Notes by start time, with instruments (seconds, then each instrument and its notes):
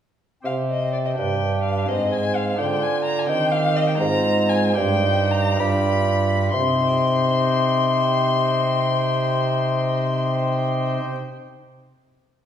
0.42 bassoon C3, pipe organ C4 G4 C5, violin F5
0.46 pipe organ C3
0.70 violin D#5
0.93 violin D5
1.05 violin D#5
1.14 bassoon G2, pipe organ D4 G4 B4, violin G5
1.18 pipe organ G2
1.63 violin F5
1.85 bassoon G#2, pipe organ C4 G#4 C5, violin D#5
1.89 pipe organ G#2
2.12 violin G#5
2.36 violin F5
2.54 pipe organ D4 F4 C5, violin G5
2.59 pipe organ D3, bassoon D3
2.83 violin G#5
3.05 violin A#5
3.19 violin G#5
3.24 pipe organ C4 G4 C5
3.29 pipe organ D#3, bassoon D#3, violin G5
3.52 violin F5
3.76 violin D#5
3.87 violin G5
3.94 pipe organ G#3 C4 F4, violin A#5
3.99 pipe organ G#2 C5, bassoon G#2
4.49 violin G#5
4.72 pipe organ D#4 G4 C5, violin G5
4.77 pipe organ G2, bassoon G2
5.31 violin A#5
5.56 pipe organ F4 G4 D5, violin B5
5.60 bassoon G2, pipe organ G2
6.53 pipe organ C3, bassoon C3, violin C6
6.60 pipe organ C4
6.67 pipe organ D#4
6.74 pipe organ G4
6.80 pipe organ C5
6.88 pipe organ G5